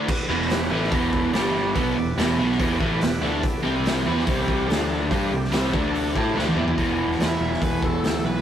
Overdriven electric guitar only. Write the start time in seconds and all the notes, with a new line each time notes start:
0.29 E2 B2 E3
0.70 A2 E3 A3
0.91 E2 B2 E3
1.34 G2 D3 G3
1.75 B2 F#3 B3
1.96 E2 B2
2.18 E2 B2 E3
2.38 B2 F#3 B3
2.60 E2 B2 E3
2.80 A2 E3 A3
3.01 E2 B2
3.22 D3 A3 D4
3.63 C3 G3 C4
4.07 E3 B3 E4
4.26 C3 G3 C4
4.69 D3 A3 D4
5.11 G3 D4 G4
5.32 C3 G3
5.52 C3 G3 C4
5.74 D3 A3 D4
6.15 A3 E4 A4
6.35 D3 A3 D4
6.56 E3 B3 E4
6.77 E2 B2 E3